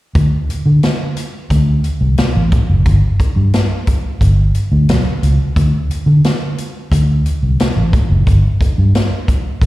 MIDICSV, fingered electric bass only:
0, 0, Header, 1, 3, 480
1, 0, Start_track
1, 0, Tempo, 676437
1, 106, Time_signature, 4, 2, 24, 8
1, 6855, End_track
2, 0, Start_track
2, 0, Title_t, "Fingered electric bass"
2, 0, Program_c, 0, 33
2, 107, Note_on_c, 0, 38, 93
2, 209, Note_off_c, 0, 38, 0
2, 466, Note_on_c, 0, 50, 91
2, 569, Note_off_c, 0, 50, 0
2, 1065, Note_on_c, 0, 38, 82
2, 1271, Note_off_c, 0, 38, 0
2, 1425, Note_on_c, 0, 36, 92
2, 1529, Note_off_c, 0, 36, 0
2, 1669, Note_on_c, 0, 33, 86
2, 1771, Note_off_c, 0, 33, 0
2, 1911, Note_on_c, 0, 30, 80
2, 2012, Note_off_c, 0, 30, 0
2, 2025, Note_on_c, 0, 31, 100
2, 2129, Note_off_c, 0, 31, 0
2, 2386, Note_on_c, 0, 43, 84
2, 2489, Note_off_c, 0, 43, 0
2, 2987, Note_on_c, 0, 31, 71
2, 3192, Note_off_c, 0, 31, 0
2, 3347, Note_on_c, 0, 38, 87
2, 3450, Note_off_c, 0, 38, 0
2, 3468, Note_on_c, 0, 35, 79
2, 3570, Note_off_c, 0, 35, 0
2, 3709, Note_on_c, 0, 37, 85
2, 3811, Note_off_c, 0, 37, 0
2, 3947, Note_on_c, 0, 38, 111
2, 4050, Note_off_c, 0, 38, 0
2, 4302, Note_on_c, 0, 50, 92
2, 4407, Note_off_c, 0, 50, 0
2, 4907, Note_on_c, 0, 38, 91
2, 5112, Note_off_c, 0, 38, 0
2, 5271, Note_on_c, 0, 36, 70
2, 5371, Note_off_c, 0, 36, 0
2, 5510, Note_on_c, 0, 33, 78
2, 5611, Note_off_c, 0, 33, 0
2, 5744, Note_on_c, 0, 30, 81
2, 5847, Note_off_c, 0, 30, 0
2, 5868, Note_on_c, 0, 31, 93
2, 5969, Note_off_c, 0, 31, 0
2, 6231, Note_on_c, 0, 43, 87
2, 6331, Note_off_c, 0, 43, 0
2, 6823, Note_on_c, 0, 31, 81
2, 6855, Note_off_c, 0, 31, 0
2, 6855, End_track
3, 0, Start_track
3, 0, Title_t, "Muted fingered electric bass strokes"
3, 347, Note_on_c, 9, 29, 43
3, 418, Note_off_c, 9, 29, 0
3, 2267, Note_on_c, 9, 29, 37
3, 2338, Note_off_c, 9, 29, 0
3, 4184, Note_on_c, 9, 29, 40
3, 4254, Note_off_c, 9, 29, 0
3, 6109, Note_on_c, 9, 29, 37
3, 6180, Note_off_c, 9, 29, 0
3, 6855, End_track
0, 0, End_of_file